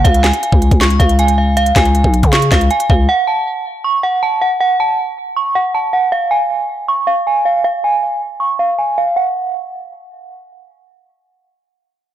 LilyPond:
<<
  \new Staff \with { instrumentName = "Synth bell" } { \time 4/4 \key cis \phrygian \tempo 4 = 158 eis''8 gis''4. cis'''8 eis''8 gis''8 eis''8 | eis''8 gis''4. cis'''8 eis''8 gis''8 eis''8 | fis''8 a''4. cis'''8 fis''8 a''8 fis''8 | fis''8 a''4. cis'''8 fis''8 a''8 fis''8 |
eis''8 gis''4. cis'''8 eis''8 gis''8 eis''8 | eis''8 gis''4. cis'''8 eis''8 gis''8 eis''8 | fis''2. r4 | r1 | }
  \new Staff \with { instrumentName = "808-style bass" } { \clef bass \time 4/4 \key cis \phrygian cis,8. r8 cis,8 cis,8. cis,4.~ | cis,8 cis,8. b,,8 cis8. cis,8 r8 cis,8 | r1 | r1 |
r1 | r1 | r1 | r1 | }
  \new DrumStaff \with { instrumentName = "Drums" } \drummode { \time 4/4 <hh bd>16 hh16 <hc hh sn>16 hh16 hh16 bd16 hh16 <hh bd>16 <hc hh sn>16 hh16 <hh bd>16 hh16 hh16 hh8. | hh16 hh16 <hc hh bd sn>16 hh16 hh16 bd16 hh16 <hh bd>16 <hc hh sn>16 hh16 <hc hh bd sn>16 hh16 hh16 hh16 bd8 | r4 r4 r4 r4 | r4 r4 r4 r4 |
r4 r4 r4 r4 | r4 r4 r4 r4 | r4 r4 r4 r4 | r4 r4 r4 r4 | }
>>